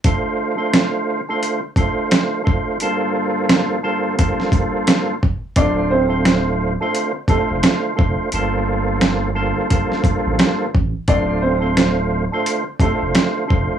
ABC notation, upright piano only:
X:1
M:4/4
L:1/16
Q:"Swing 16ths" 1/4=87
K:Dm
V:1 name="Upright piano"
z16 | z16 | [Dd]2 [Cc]3 z4 z [A,A] z4 z | z16 |
[Dd]2 [Cc]3 z4 z [A,A] z4 z |]